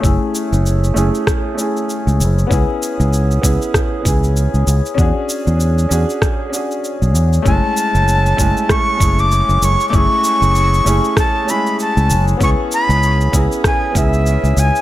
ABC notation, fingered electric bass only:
X:1
M:4/4
L:1/16
Q:"Swing 16ths" 1/4=97
K:F#m
V:1 name="Fingered electric bass" clef=bass
F,,, z2 F,,,3 F,,, z6 C,, F,,, z | C,, z2 C,,3 C,, z3 C,,3 C,, C,, z | E,, z2 E,,3 E,, z6 B,,, E,, z | F,,, z2 F,,,3 F,,, z3 F,,,3 F,,, F,,, z |
F,,, z2 F,,,3 F,,, z6 C,, F,,, z | C,, z2 C,,3 C,, z3 C,,3 C,, C,, z |]